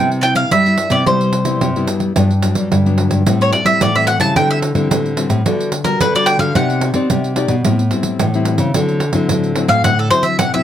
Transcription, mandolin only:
0.21 0.35 G5 medium
0.21 0.24 A5 medium
0.36 0.49 F5 medium
0.52 0.94 E5 medium
0.92 1.05 D5 medium
1.07 1.85 C5 medium
3.42 3.52 C#5 medium
3.53 3.66 D5 medium
3.66 3.80 E5 medium
3.82 3.95 D5 medium
3.95 4.07 E5 medium
4.07 4.20 F#5 medium
4.21 4.35 A5 medium
4.36 4.49 G5 medium
4.51 4.58 E5 medium
5.84 5.99 A#4 medium
6.01 6.14 B4 medium
6.16 6.28 D5 medium
6.26 6.39 G5 medium
6.39 6.54 F5 medium
6.56 8.16 F#5 medium
9.69 9.83 F5 medium
9.84 9.98 F#5 medium
9.99 10.10 A4 medium
10.11 10.24 C5 medium
10.23 10.38 E5 medium
10.39 10.52 F#5 medium
10.54 10.63 E5 medium

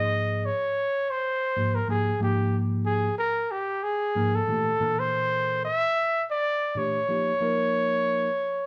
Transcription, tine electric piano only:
0.00 0.48 G#2 medium
0.00 0.48 F3 medium
0.00 0.48 A#3 medium
0.00 0.48 D#4 medium
0.00 0.49 G#4 medium
1.56 1.78 G#2 medium
1.56 1.79 F3 medium
1.56 1.79 A#3 medium
1.56 1.79 D#4 medium
1.56 1.79 G4 medium
1.88 2.10 G#2 medium
1.88 2.10 F3 medium
1.88 2.11 A#3 medium
1.88 2.11 D#4 medium
1.88 2.11 G4 medium
2.20 3.07 G#2 medium
2.20 3.07 F3 medium
2.20 3.07 A#3 medium
2.20 3.08 D#4 medium
2.20 3.08 G4 medium
4.15 4.38 G#2 medium
4.15 4.38 F3 medium
4.15 4.38 A#3 medium
4.15 4.38 D#4 medium
4.15 4.39 A#4 medium
4.48 4.70 A#2 medium
4.48 4.71 E3 medium
4.48 4.71 A3 medium
4.48 4.71 D4 medium
4.48 4.71 G4 medium
4.80 5.67 A#2 medium
4.80 5.67 E3 medium
4.80 5.67 D4 medium
4.80 5.67 A4 medium
4.80 5.68 A#4 medium
6.75 6.98 A#2 medium
6.75 6.98 E3 medium
6.75 6.98 A3 medium
6.75 6.98 D4 soft
6.75 6.99 G4 medium
7.08 7.31 F3 medium
7.08 7.31 A#3 medium
7.08 7.31 D#4 medium
7.08 7.32 G4 medium
7.41 8.27 F3 medium
7.41 8.27 A#3 medium
7.41 8.28 D#4 medium
7.41 8.28 A#4 medium

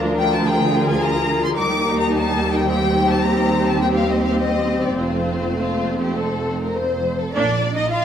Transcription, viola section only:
0.00 1.53 F3 medium
0.00 0.43 D4 medium
0.46 1.53 F4 soft
1.58 4.94 G3 medium
1.58 2.65 D#4 medium
2.69 7.09 C4 medium
4.98 7.09 A3 soft
7.35 7.61 A#3 soft
7.35 7.61 D4 medium

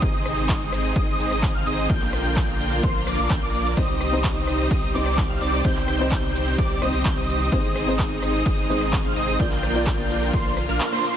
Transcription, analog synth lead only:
0.02 0.93 D#6 medium
0.96 1.17 D#6 loud
1.19 1.52 D#6 medium
1.54 1.63 F6 medium
1.66 1.87 D#6 loud
1.90 2.81 G6 loud
2.83 3.04 C6 loud
3.07 3.17 D6 loud
3.19 3.29 D6 medium
3.30 3.40 G6 medium
3.42 3.74 D6 medium
3.77 4.68 D#6 loud
4.71 4.92 D#6 medium
4.94 5.27 D6 medium
5.29 5.38 F6 medium
5.41 5.62 D6 loud
5.65 6.56 G6 loud
6.58 6.79 D6 loud
6.82 6.92 D#6 medium
6.94 7.04 D#6 medium
7.05 7.15 G6 medium
7.17 7.49 D#6 medium
7.52 8.43 D#6 loud
8.46 8.67 D#6 loud
8.69 9.02 D#6 medium
9.04 9.13 F6 medium
9.16 9.37 D#6 loud
9.40 10.31 G6 loud
10.33 10.54 C6 loud
10.69 10.85 F6 medium
10.92 11.17 C6 loud

